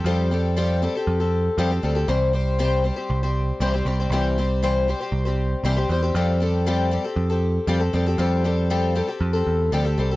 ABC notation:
X:1
M:4/4
L:1/16
Q:1/4=118
K:Flyd
V:1 name="Twelve-string acoustic guitar"
[F,G,CGA]2 [G,CGA]2 [F,G,CGA]2 [G,CGA] [CGA]2 [CGA]3 [F,G,CGA] [CGA] [G,CGA] [CGA] | [C,E,G,CGc]2 [G,CGc]2 [C,E,G,CGc]2 [G,CGc] [G,CGc]2 [G,CGc]3 [C,E,G,CGc] [G,CGc] [G,CGc] [G,CGc] | [C,E,G,CGc]2 [G,CGc]2 [C,E,G,CGc]2 [G,CGc] [G,CGc]2 [G,CGc]3 [C,E,G,CGc] [G,CGc] [G,CGc] [G,CGc] | [F,G,CGA]2 [G,CGA]2 [F,G,CGA]2 [G,CGA] [CGA]2 [CGA]3 [F,G,CGA] [CGA] [G,CGA] [CGA] |
[F,G,CGA]2 [G,CGA]2 [F,G,CGA]2 [G,CGA] [CGA]2 [CGA]3 [F,G,CGA] [CGA] [G,CGA] [CGA] |]
V:2 name="Picked electric bass" clef=bass
F,,8 F,,4 F,,2 D,,2 | C,,8 C,,4 C,,2 C,,2 | C,,8 C,,4 C,,2 E,,2 | F,,8 F,,4 F,,2 F,,2 |
F,,8 F,,2 E,,2 D,,2 C,,2 |]